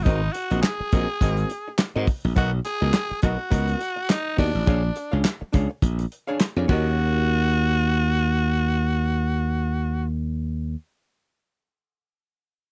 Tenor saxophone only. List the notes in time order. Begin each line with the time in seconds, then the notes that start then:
0.03 D#4
0.32 F#4
0.62 G#4
2.37 F#4
2.65 G#4
3.23 F#4
4.10 D#4
4.39 D4
6.69 F#4